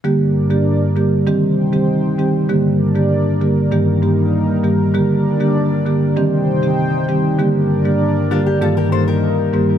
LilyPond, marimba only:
\new Staff \with { instrumentName = "Marimba" } { \clef bass \time 4/4 \key g \minor \tempo 4 = 98 <d g bes g'>8. <d g bes g'>8. <d g bes g'>8 <ees g c' g'>16 r8 <ees g c' g'>8. <ees g c' g'>8 | <d g bes g'>16 r8 <d g bes g'>8. <d g bes g'>8 <g, ees g bes g'>8 <g, ees g bes g'>16 r8. <g, ees g bes g'>8 | <d g bes g'>8. <d g bes g'>8. <d g bes g'>8 <ees g c' g'>16 r8 <ees g c' g'>8. <ees g c' g'>8 | <d g bes g'>16 r8 <d g bes g'>8. <d g bes g'>8 <g, ees g bes g'>8 <g, ees g bes g'>16 r8. <g, ees g bes g'>8 | }